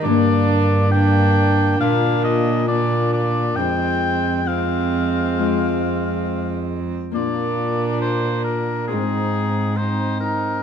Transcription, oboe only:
\new Staff \with { instrumentName = "Oboe" } { \time 4/4 \key bes \mixolydian \tempo 4 = 68 d''4 g''4 f''8 ees''8 d''8 d''8 | g''4 f''2~ f''8 r8 | d''4 c''8 bes'8 aes'4 c''8 bes'8 | }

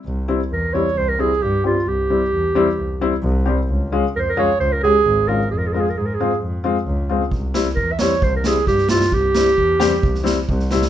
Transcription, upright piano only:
\new Staff \with { instrumentName = "Upright piano" } { \time 4/4 \tempo 4 = 132 r8 <g c' e'>16 r8. <g c' e'>16 r8. <g c' e'>16 r8. <g c' g'>16 r16 | r8 <g c' e'>16 r8. <g c' e'>16 r8. <g c' e'>16 r8. <g c' g'>16 r16 | r8 <aes des' f'>16 r8. <aes des' f'>16 r8. <aes des' g'>16 r8. <aes des' f'>16 r16 | r8 <aes c' f'>16 r8. <aes c' f'>16 r8. <aes c' f'>16 r8. <aes c' f'>16 r16 |
r8 <g c' e'>16 r8. <g c' e'>16 r8. <g c' e'>16 r8. <g c' e'>16 r16 | r8 <g c' e'>16 r8. <g c' g'>16 r8. <g c' e'>16 r8. <g c' e'>16 r16 | }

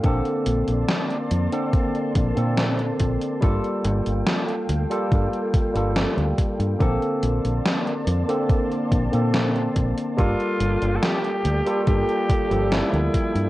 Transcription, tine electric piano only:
\new Staff \with { instrumentName = "Tine electric piano" } { \time 4/4 \key bes \major \tempo 4 = 71 <d bes c' a'>4.~ <d bes c' a'>16 <d bes c' a'>4 <d bes c' a'>4~ <d bes c' a'>16 | <g bes f' a'>4.~ <g bes f' a'>16 <g bes f' a'>4 <g bes f' a'>4~ <g bes f' a'>16 | <d bes c' a'>4.~ <d bes c' a'>16 <d bes c' a'>4 <d bes c' a'>4~ <d bes c' a'>16 | <g bes f' a'>4.~ <g bes f' a'>16 <g bes f' a'>4 <f g bes a'>4~ <f g bes a'>16 | }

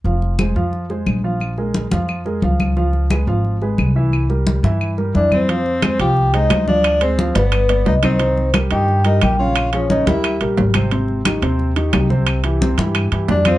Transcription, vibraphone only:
\new Staff \with { instrumentName = "Vibraphone" } { \time 4/4 \key c \minor \tempo 4 = 177 r1 | r1 | r1 | r2. d''8 c''8~ |
\key f \minor c''4. g''4 ees''4 d''8~ | d''8 c''4 b'4. ees''8 c''8~ | c''4 r8 g''4 ees''8 g''8 f''8~ | f''8 des''8 ees''8 e''4 r4. |
r1 | r2. d''8 c''8 | }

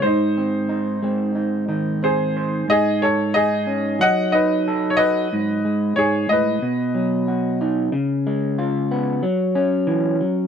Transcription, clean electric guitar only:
\new Staff \with { instrumentName = "Clean electric guitar" } { \time 4/4 \key gis \phrygian \tempo 4 = 92 << { r8 bis8 dis'8 bis8 dis'8 dis'8 bis8 bis'8 | r4 dis'8 cis'8 r4 a'8 fis'8 | r2. fis'8 dis'8 | r4 eis'8 b8 r2 | } \\ { gis,4. gis4 dis4. | gis,2 fis8 dis'4. | gis,8 gis8 gis,8 a,8 b,8 fis4. | cis8 gis4. fis8 cis'8 e8 fis8 | } >> }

